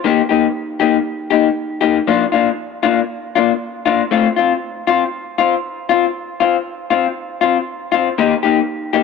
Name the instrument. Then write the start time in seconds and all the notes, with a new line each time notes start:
clean electric guitar
0.04 D#3 A#3 D#4 G4
0.29 A#3 D#4 G4
0.80 A#3 D#4 G4
1.30 A#3 D#4 G4
1.81 A#3 D#4 G4
2.07 F3 A#3 D4 F4
2.32 A#3 D4 F4
2.83 A#3 D4 F4
3.35 A#3 D4 F4
3.86 A#3 D4 F4
4.11 A3 C4 F4
4.36 C4 F4
4.87 C4 F4
5.38 C4 F4
5.89 C4 F4
6.40 C4 F4
6.90 C4 F4
7.41 C4 F4
7.92 C4 F4
8.18 D#3 A#3 D#4 G4
8.43 A#3 D#4 G4
8.93 A#3 D#4 G4